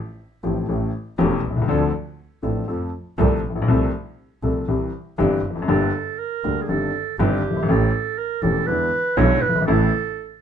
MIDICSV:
0, 0, Header, 1, 4, 480
1, 0, Start_track
1, 0, Key_signature, -1, "major"
1, 0, Tempo, 499168
1, 1619, Time_signature, 4, 2, 24, 8
1, 10016, End_track
2, 0, Start_track
2, 0, Title_t, "Clarinet"
2, 0, Program_c, 0, 71
2, 5472, Note_on_c, 0, 69, 82
2, 5952, Note_on_c, 0, 70, 88
2, 5966, Note_off_c, 0, 69, 0
2, 6364, Note_on_c, 0, 68, 65
2, 6378, Note_off_c, 0, 70, 0
2, 6430, Note_on_c, 0, 69, 90
2, 6445, Note_off_c, 0, 68, 0
2, 6904, Note_off_c, 0, 69, 0
2, 6910, Note_on_c, 0, 67, 78
2, 7398, Note_on_c, 0, 69, 91
2, 7412, Note_off_c, 0, 67, 0
2, 7868, Note_on_c, 0, 70, 90
2, 7882, Note_off_c, 0, 69, 0
2, 8100, Note_on_c, 0, 69, 93
2, 8114, Note_off_c, 0, 70, 0
2, 8343, Note_on_c, 0, 71, 109
2, 8357, Note_off_c, 0, 69, 0
2, 8820, Note_on_c, 0, 73, 99
2, 8834, Note_off_c, 0, 71, 0
2, 9055, Note_on_c, 0, 71, 102
2, 9069, Note_off_c, 0, 73, 0
2, 9287, Note_off_c, 0, 71, 0
2, 9293, Note_on_c, 0, 69, 90
2, 9958, Note_off_c, 0, 69, 0
2, 10016, End_track
3, 0, Start_track
3, 0, Title_t, "Grand piano"
3, 0, Program_c, 1, 0
3, 415, Note_on_c, 1, 53, 48
3, 416, Note_on_c, 1, 45, 56
3, 417, Note_on_c, 1, 60, 43
3, 418, Note_on_c, 1, 33, 57
3, 419, Note_on_c, 1, 57, 43
3, 421, Note_on_c, 1, 67, 55
3, 619, Note_off_c, 1, 45, 0
3, 619, Note_off_c, 1, 53, 0
3, 620, Note_off_c, 1, 33, 0
3, 620, Note_off_c, 1, 60, 0
3, 621, Note_off_c, 1, 57, 0
3, 621, Note_off_c, 1, 67, 0
3, 657, Note_on_c, 1, 57, 45
3, 658, Note_on_c, 1, 52, 50
3, 659, Note_on_c, 1, 45, 56
3, 660, Note_on_c, 1, 61, 44
3, 662, Note_on_c, 1, 33, 60
3, 664, Note_on_c, 1, 67, 52
3, 859, Note_off_c, 1, 57, 0
3, 860, Note_off_c, 1, 45, 0
3, 860, Note_off_c, 1, 52, 0
3, 861, Note_off_c, 1, 61, 0
3, 862, Note_off_c, 1, 33, 0
3, 863, Note_off_c, 1, 67, 0
3, 1135, Note_on_c, 1, 52, 78
3, 1139, Note_on_c, 1, 40, 86
3, 1139, Note_on_c, 1, 57, 69
3, 1139, Note_on_c, 1, 67, 82
3, 1140, Note_on_c, 1, 28, 85
3, 1140, Note_on_c, 1, 61, 71
3, 1339, Note_off_c, 1, 52, 0
3, 1340, Note_off_c, 1, 67, 0
3, 1341, Note_off_c, 1, 28, 0
3, 1341, Note_off_c, 1, 40, 0
3, 1341, Note_off_c, 1, 57, 0
3, 1341, Note_off_c, 1, 61, 0
3, 1447, Note_on_c, 1, 35, 54
3, 1503, Note_off_c, 1, 35, 0
3, 1503, Note_on_c, 1, 36, 67
3, 1555, Note_on_c, 1, 37, 74
3, 1561, Note_off_c, 1, 36, 0
3, 1616, Note_on_c, 1, 50, 89
3, 1616, Note_on_c, 1, 60, 64
3, 1617, Note_off_c, 1, 37, 0
3, 1617, Note_on_c, 1, 38, 78
3, 1617, Note_on_c, 1, 53, 70
3, 1619, Note_on_c, 1, 62, 66
3, 1624, Note_on_c, 1, 69, 80
3, 1819, Note_off_c, 1, 38, 0
3, 1819, Note_off_c, 1, 50, 0
3, 1819, Note_off_c, 1, 53, 0
3, 1819, Note_off_c, 1, 60, 0
3, 1821, Note_off_c, 1, 62, 0
3, 1823, Note_off_c, 1, 69, 0
3, 2331, Note_on_c, 1, 53, 51
3, 2332, Note_on_c, 1, 60, 46
3, 2333, Note_on_c, 1, 33, 57
3, 2333, Note_on_c, 1, 62, 46
3, 2336, Note_on_c, 1, 45, 57
3, 2338, Note_on_c, 1, 69, 54
3, 2535, Note_off_c, 1, 53, 0
3, 2536, Note_off_c, 1, 33, 0
3, 2536, Note_off_c, 1, 60, 0
3, 2536, Note_off_c, 1, 62, 0
3, 2538, Note_off_c, 1, 45, 0
3, 2539, Note_off_c, 1, 69, 0
3, 2568, Note_on_c, 1, 53, 54
3, 2572, Note_on_c, 1, 57, 44
3, 2573, Note_on_c, 1, 41, 57
3, 2573, Note_on_c, 1, 60, 45
3, 2577, Note_on_c, 1, 69, 55
3, 2775, Note_off_c, 1, 53, 0
3, 2776, Note_off_c, 1, 41, 0
3, 2776, Note_off_c, 1, 57, 0
3, 2776, Note_off_c, 1, 60, 0
3, 2778, Note_off_c, 1, 69, 0
3, 3055, Note_on_c, 1, 53, 70
3, 3057, Note_on_c, 1, 57, 64
3, 3058, Note_on_c, 1, 36, 78
3, 3058, Note_on_c, 1, 69, 75
3, 3059, Note_on_c, 1, 48, 87
3, 3060, Note_on_c, 1, 60, 63
3, 3257, Note_off_c, 1, 53, 0
3, 3258, Note_off_c, 1, 36, 0
3, 3258, Note_off_c, 1, 57, 0
3, 3258, Note_off_c, 1, 69, 0
3, 3259, Note_off_c, 1, 48, 0
3, 3259, Note_off_c, 1, 60, 0
3, 3362, Note_on_c, 1, 33, 50
3, 3418, Note_on_c, 1, 34, 64
3, 3419, Note_off_c, 1, 33, 0
3, 3477, Note_off_c, 1, 34, 0
3, 3479, Note_on_c, 1, 35, 76
3, 3537, Note_off_c, 1, 35, 0
3, 3537, Note_on_c, 1, 36, 78
3, 3538, Note_on_c, 1, 53, 67
3, 3539, Note_on_c, 1, 57, 67
3, 3540, Note_on_c, 1, 48, 80
3, 3542, Note_on_c, 1, 60, 62
3, 3542, Note_on_c, 1, 69, 72
3, 3738, Note_off_c, 1, 36, 0
3, 3738, Note_off_c, 1, 53, 0
3, 3739, Note_off_c, 1, 57, 0
3, 3740, Note_off_c, 1, 48, 0
3, 3740, Note_off_c, 1, 60, 0
3, 3741, Note_off_c, 1, 69, 0
3, 4256, Note_on_c, 1, 53, 47
3, 4257, Note_on_c, 1, 60, 43
3, 4258, Note_on_c, 1, 57, 43
3, 4259, Note_on_c, 1, 36, 56
3, 4259, Note_on_c, 1, 48, 51
3, 4261, Note_on_c, 1, 69, 53
3, 4460, Note_off_c, 1, 53, 0
3, 4461, Note_off_c, 1, 57, 0
3, 4461, Note_off_c, 1, 60, 0
3, 4462, Note_off_c, 1, 36, 0
3, 4462, Note_off_c, 1, 48, 0
3, 4463, Note_off_c, 1, 69, 0
3, 4499, Note_on_c, 1, 52, 46
3, 4500, Note_on_c, 1, 55, 44
3, 4501, Note_on_c, 1, 36, 55
3, 4502, Note_on_c, 1, 60, 42
3, 4505, Note_on_c, 1, 48, 53
3, 4506, Note_on_c, 1, 67, 51
3, 4703, Note_off_c, 1, 52, 0
3, 4703, Note_off_c, 1, 55, 0
3, 4704, Note_off_c, 1, 36, 0
3, 4705, Note_off_c, 1, 60, 0
3, 4706, Note_off_c, 1, 48, 0
3, 4706, Note_off_c, 1, 67, 0
3, 4980, Note_on_c, 1, 55, 65
3, 4984, Note_on_c, 1, 43, 85
3, 4984, Note_on_c, 1, 52, 69
3, 4984, Note_on_c, 1, 60, 63
3, 4986, Note_on_c, 1, 31, 78
3, 4987, Note_on_c, 1, 67, 79
3, 5185, Note_off_c, 1, 55, 0
3, 5187, Note_off_c, 1, 43, 0
3, 5187, Note_off_c, 1, 52, 0
3, 5187, Note_off_c, 1, 60, 0
3, 5188, Note_off_c, 1, 31, 0
3, 5189, Note_off_c, 1, 67, 0
3, 5287, Note_on_c, 1, 40, 52
3, 5341, Note_on_c, 1, 41, 62
3, 5347, Note_off_c, 1, 40, 0
3, 5404, Note_off_c, 1, 41, 0
3, 5405, Note_on_c, 1, 42, 72
3, 5464, Note_on_c, 1, 31, 80
3, 5465, Note_on_c, 1, 50, 68
3, 5466, Note_off_c, 1, 42, 0
3, 5466, Note_on_c, 1, 55, 59
3, 5466, Note_on_c, 1, 67, 79
3, 5467, Note_on_c, 1, 43, 81
3, 5467, Note_on_c, 1, 58, 62
3, 5668, Note_off_c, 1, 31, 0
3, 5668, Note_off_c, 1, 50, 0
3, 5668, Note_off_c, 1, 55, 0
3, 5669, Note_off_c, 1, 43, 0
3, 5669, Note_off_c, 1, 58, 0
3, 5669, Note_off_c, 1, 67, 0
3, 6193, Note_on_c, 1, 38, 53
3, 6193, Note_on_c, 1, 55, 44
3, 6194, Note_on_c, 1, 50, 53
3, 6195, Note_on_c, 1, 58, 42
3, 6196, Note_on_c, 1, 67, 49
3, 6393, Note_off_c, 1, 38, 0
3, 6393, Note_off_c, 1, 55, 0
3, 6394, Note_off_c, 1, 58, 0
3, 6395, Note_off_c, 1, 67, 0
3, 6396, Note_off_c, 1, 50, 0
3, 6431, Note_on_c, 1, 43, 55
3, 6432, Note_on_c, 1, 51, 48
3, 6433, Note_on_c, 1, 31, 53
3, 6434, Note_on_c, 1, 62, 45
3, 6436, Note_on_c, 1, 60, 42
3, 6437, Note_on_c, 1, 67, 54
3, 6633, Note_off_c, 1, 43, 0
3, 6633, Note_off_c, 1, 51, 0
3, 6634, Note_off_c, 1, 31, 0
3, 6634, Note_off_c, 1, 62, 0
3, 6636, Note_off_c, 1, 60, 0
3, 6636, Note_off_c, 1, 67, 0
3, 6917, Note_on_c, 1, 60, 66
3, 6918, Note_on_c, 1, 31, 86
3, 6919, Note_on_c, 1, 51, 67
3, 6920, Note_on_c, 1, 43, 81
3, 6921, Note_on_c, 1, 62, 67
3, 6922, Note_on_c, 1, 67, 83
3, 7116, Note_off_c, 1, 60, 0
3, 7117, Note_off_c, 1, 31, 0
3, 7117, Note_off_c, 1, 43, 0
3, 7117, Note_off_c, 1, 51, 0
3, 7118, Note_off_c, 1, 62, 0
3, 7119, Note_off_c, 1, 67, 0
3, 7219, Note_on_c, 1, 30, 53
3, 7272, Note_on_c, 1, 31, 64
3, 7275, Note_off_c, 1, 30, 0
3, 7332, Note_off_c, 1, 31, 0
3, 7335, Note_on_c, 1, 32, 77
3, 7388, Note_on_c, 1, 52, 71
3, 7391, Note_on_c, 1, 33, 80
3, 7391, Note_on_c, 1, 45, 80
3, 7391, Note_on_c, 1, 57, 68
3, 7393, Note_off_c, 1, 32, 0
3, 7394, Note_on_c, 1, 61, 65
3, 7395, Note_on_c, 1, 67, 75
3, 7590, Note_off_c, 1, 52, 0
3, 7592, Note_off_c, 1, 33, 0
3, 7592, Note_off_c, 1, 45, 0
3, 7592, Note_off_c, 1, 57, 0
3, 7593, Note_off_c, 1, 61, 0
3, 7594, Note_off_c, 1, 67, 0
3, 8101, Note_on_c, 1, 52, 50
3, 8104, Note_on_c, 1, 57, 47
3, 8105, Note_on_c, 1, 28, 59
3, 8105, Note_on_c, 1, 40, 60
3, 8105, Note_on_c, 1, 61, 44
3, 8108, Note_on_c, 1, 67, 58
3, 8305, Note_off_c, 1, 52, 0
3, 8306, Note_off_c, 1, 28, 0
3, 8306, Note_off_c, 1, 40, 0
3, 8306, Note_off_c, 1, 57, 0
3, 8307, Note_off_c, 1, 61, 0
3, 8308, Note_off_c, 1, 67, 0
3, 8345, Note_on_c, 1, 52, 56
3, 8346, Note_on_c, 1, 40, 55
3, 8346, Note_on_c, 1, 50, 50
3, 8346, Note_on_c, 1, 56, 46
3, 8347, Note_on_c, 1, 59, 45
3, 8348, Note_on_c, 1, 64, 56
3, 8546, Note_off_c, 1, 50, 0
3, 8546, Note_off_c, 1, 52, 0
3, 8547, Note_off_c, 1, 40, 0
3, 8547, Note_off_c, 1, 56, 0
3, 8547, Note_off_c, 1, 59, 0
3, 8548, Note_off_c, 1, 64, 0
3, 8817, Note_on_c, 1, 50, 75
3, 8818, Note_on_c, 1, 35, 90
3, 8819, Note_on_c, 1, 47, 86
3, 8819, Note_on_c, 1, 56, 70
3, 8821, Note_on_c, 1, 64, 86
3, 8823, Note_on_c, 1, 59, 72
3, 9021, Note_off_c, 1, 50, 0
3, 9022, Note_off_c, 1, 35, 0
3, 9022, Note_off_c, 1, 47, 0
3, 9022, Note_off_c, 1, 56, 0
3, 9023, Note_off_c, 1, 64, 0
3, 9025, Note_off_c, 1, 59, 0
3, 9127, Note_on_c, 1, 30, 55
3, 9185, Note_off_c, 1, 30, 0
3, 9189, Note_on_c, 1, 31, 67
3, 9246, Note_off_c, 1, 31, 0
3, 9248, Note_on_c, 1, 32, 77
3, 9304, Note_on_c, 1, 49, 74
3, 9305, Note_off_c, 1, 32, 0
3, 9306, Note_on_c, 1, 45, 80
3, 9307, Note_on_c, 1, 33, 86
3, 9308, Note_on_c, 1, 52, 69
3, 9308, Note_on_c, 1, 57, 67
3, 9308, Note_on_c, 1, 64, 81
3, 9504, Note_off_c, 1, 49, 0
3, 9505, Note_off_c, 1, 45, 0
3, 9506, Note_off_c, 1, 33, 0
3, 9506, Note_off_c, 1, 52, 0
3, 9507, Note_off_c, 1, 57, 0
3, 9507, Note_off_c, 1, 64, 0
3, 10016, End_track
4, 0, Start_track
4, 0, Title_t, "Double bass"
4, 0, Program_c, 2, 43
4, 423, Note_on_c, 2, 33, 60
4, 623, Note_off_c, 2, 33, 0
4, 666, Note_on_c, 2, 33, 64
4, 864, Note_off_c, 2, 33, 0
4, 1146, Note_on_c, 2, 28, 96
4, 1344, Note_off_c, 2, 28, 0
4, 1385, Note_on_c, 2, 36, 54
4, 1622, Note_off_c, 2, 36, 0
4, 1627, Note_on_c, 2, 38, 94
4, 1824, Note_off_c, 2, 38, 0
4, 2343, Note_on_c, 2, 33, 60
4, 2541, Note_off_c, 2, 33, 0
4, 2587, Note_on_c, 2, 41, 64
4, 2783, Note_off_c, 2, 41, 0
4, 3063, Note_on_c, 2, 36, 96
4, 3261, Note_off_c, 2, 36, 0
4, 3303, Note_on_c, 2, 34, 56
4, 3539, Note_off_c, 2, 34, 0
4, 3544, Note_on_c, 2, 36, 92
4, 3742, Note_off_c, 2, 36, 0
4, 4259, Note_on_c, 2, 36, 62
4, 4462, Note_off_c, 2, 36, 0
4, 4502, Note_on_c, 2, 36, 66
4, 4704, Note_off_c, 2, 36, 0
4, 4988, Note_on_c, 2, 31, 98
4, 5189, Note_off_c, 2, 31, 0
4, 5234, Note_on_c, 2, 29, 55
4, 5464, Note_off_c, 2, 29, 0
4, 5470, Note_on_c, 2, 31, 86
4, 5671, Note_off_c, 2, 31, 0
4, 6195, Note_on_c, 2, 38, 59
4, 6394, Note_off_c, 2, 38, 0
4, 6434, Note_on_c, 2, 31, 61
4, 6634, Note_off_c, 2, 31, 0
4, 6914, Note_on_c, 2, 31, 98
4, 7115, Note_off_c, 2, 31, 0
4, 7155, Note_on_c, 2, 31, 57
4, 7387, Note_off_c, 2, 31, 0
4, 7392, Note_on_c, 2, 33, 95
4, 7593, Note_off_c, 2, 33, 0
4, 8109, Note_on_c, 2, 28, 65
4, 8308, Note_off_c, 2, 28, 0
4, 8348, Note_on_c, 2, 40, 68
4, 8547, Note_off_c, 2, 40, 0
4, 8822, Note_on_c, 2, 35, 97
4, 9024, Note_off_c, 2, 35, 0
4, 9061, Note_on_c, 2, 31, 61
4, 9298, Note_off_c, 2, 31, 0
4, 9304, Note_on_c, 2, 33, 99
4, 9504, Note_off_c, 2, 33, 0
4, 10016, End_track
0, 0, End_of_file